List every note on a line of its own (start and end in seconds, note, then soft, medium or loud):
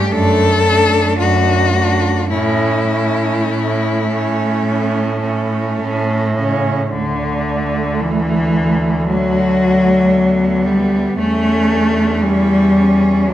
0.00 0.10 A3 medium
0.00 0.13 G4 loud
0.10 1.06 F#2 medium
0.10 0.63 A3 medium
0.10 0.63 D4 medium
0.10 1.18 A4 loud
0.63 1.71 A3 medium
0.63 1.72 D4 medium
1.19 2.17 F#2 medium
1.19 2.28 F#4 loud
1.72 2.29 A3 medium
1.72 2.30 D4 medium
2.30 3.34 A2 medium
2.30 2.87 A3 medium
2.30 2.88 C#4 medium
2.30 5.75 E4 medium
2.88 4.04 A3 medium
2.88 4.05 C#4 medium
3.49 4.52 A2 medium
4.06 5.20 A3 medium
4.06 5.20 C#4 medium
4.64 5.66 A2 medium
5.21 6.34 A3 medium
5.21 6.35 C#4 medium
5.80 6.80 A2 medium
6.36 6.88 C#3 medium
6.36 6.91 C#4 medium
6.91 11.15 D2 medium
6.91 8.02 D3 medium
6.91 9.06 A3 medium
8.01 9.07 E3 medium
9.08 10.67 F#3 medium
9.08 10.17 A3 medium
9.08 10.16 F#4 medium
10.14 10.67 A3 medium
10.14 11.20 B3 medium
10.65 11.18 G3 medium
10.65 11.18 B3 medium
11.19 13.31 E2 medium
11.19 12.24 A3 medium
11.19 12.23 C#4 medium
11.19 11.72 C#4 medium
11.71 12.24 D4 medium
12.22 13.30 G3 medium
12.22 13.29 C#4 medium
12.22 12.77 E4 medium
12.75 13.29 C#4 medium
13.27 13.34 D2 medium
13.27 13.34 F#3 medium
13.27 13.34 B3 medium
13.27 13.34 D4 medium